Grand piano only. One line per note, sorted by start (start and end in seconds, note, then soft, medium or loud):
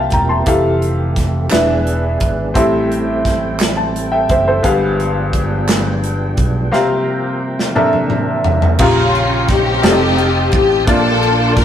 0.00 0.48 C3 medium
0.00 0.42 C4 medium
0.00 0.42 G4 medium
0.00 0.43 A#4 medium
0.00 0.48 E5 soft
0.00 0.48 F5 medium
0.00 0.14 G5 medium
0.00 0.11 A5 soft
0.13 0.29 G5 soft
0.13 0.29 A#5 medium
0.29 0.62 A5 soft
0.29 0.62 C6 soft
0.46 1.50 E3 medium
0.46 1.51 G4 medium
0.46 1.51 A4 medium
0.46 1.51 F5 medium
1.51 2.51 E3 medium
1.51 2.55 D4 medium
1.51 2.55 G#4 medium
1.51 2.55 B4 medium
1.51 2.54 E5 medium
2.54 3.56 A2 medium
2.54 4.59 C4 medium
2.54 4.59 G4 medium
2.54 3.57 A4 medium
2.54 3.58 E5 medium
3.77 4.10 A5 medium
4.12 4.28 E5 soft
4.12 4.28 G5 medium
4.29 4.46 C5 soft
4.29 4.46 E5 medium
4.48 4.80 A4 soft
4.48 4.80 C5 medium
4.63 5.64 G2 medium
4.63 6.67 B3 medium
4.63 6.68 G4 medium
4.63 6.68 G#4 medium
4.63 6.68 F5 medium
6.72 7.72 C3 medium
6.72 7.76 C4 medium
6.72 7.76 G4 medium
6.72 7.74 A#4 medium
6.72 7.76 F5 medium
7.75 8.76 C3 medium
7.75 8.79 D4 medium
7.75 8.80 A4 medium
7.75 8.79 A#4 medium
7.75 8.80 E5 medium
8.80 9.79 A#2 medium
8.80 9.84 C#3 medium
8.80 9.81 F4 medium
8.80 9.82 G4 medium
8.80 9.84 A#4 medium
8.80 9.84 F5 medium
9.82 10.87 C4 medium
9.82 10.86 F4 medium
9.82 10.87 G4 medium
9.82 10.87 A4 medium
9.82 9.90 D5 medium
9.91 10.91 D#5 medium
10.87 11.65 A#2 medium
10.87 11.65 A#3 medium
10.87 11.65 D4 medium
10.87 11.65 F4 medium
10.87 11.65 D5 medium
10.87 11.65 A5 medium